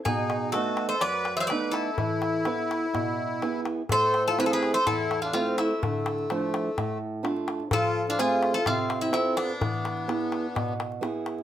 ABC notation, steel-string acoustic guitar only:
X:1
M:4/4
L:1/8
Q:1/4=126
K:Am
V:1 name="Steel-string acoustic guitar"
B,,2 [A,B,^D]2 ^F,,2 [A,B,D]2 | E,2 [B,EB]2 B,,2 [B,E^G]2 | A,,2 [A,CE]2 E,,2 [A,CE]2 | D,2 [F,A,D]2 A,,2 [A,DF]2 |
F,2 [A,CF]2 C,2 [CFA]2 | E,2 [B,E^G]2 B,,2 [B,EG]2 |]